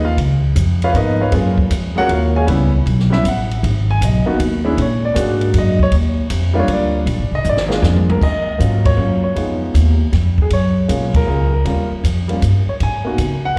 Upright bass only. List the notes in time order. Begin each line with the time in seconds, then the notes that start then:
Already playing: D#2
0.17 C#2
0.56 F2
0.94 G#2
1.32 F#2
1.70 F2
2.09 D#2
2.47 C#2
2.86 B1
3.24 A1
3.63 G#1
4.01 B1
4.26 muted upright bass stroke
4.40 D#2
4.77 A#2
5.16 G#2
5.54 F#2
5.92 D#2
6.30 F2
6.68 D2
7.06 A#1
7.18 G#1
7.31 F1
7.45 G#1
7.82 F2
8.22 D#2
8.60 G#2
8.97 F#2
9.36 F2
9.74 D#2
10.12 F2
10.50 F#2
10.89 B1
11.27 C#2
11.65 D#2
11.90 muted upright bass stroke
12.03 F2
12.42 G2
12.67 muted upright bass stroke
12.80 G#2
13.18 C#3